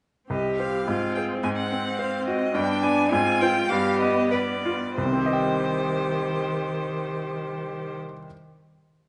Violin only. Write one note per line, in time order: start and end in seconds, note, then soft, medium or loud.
0.31 0.57 D#5 medium
0.58 1.14 F5 medium
1.15 1.23 G5 medium
1.43 1.49 G#5 medium
1.56 1.99 F#5 medium
1.97 2.26 F5 medium
2.27 2.56 D#5 medium
2.55 2.84 G5 medium
2.83 3.10 G#5 medium
3.11 3.42 G#5 medium
3.41 3.71 G5 medium
3.69 3.99 F5 medium
4.00 4.32 D#5 medium
4.30 4.95 D5 medium
4.95 7.95 C5 medium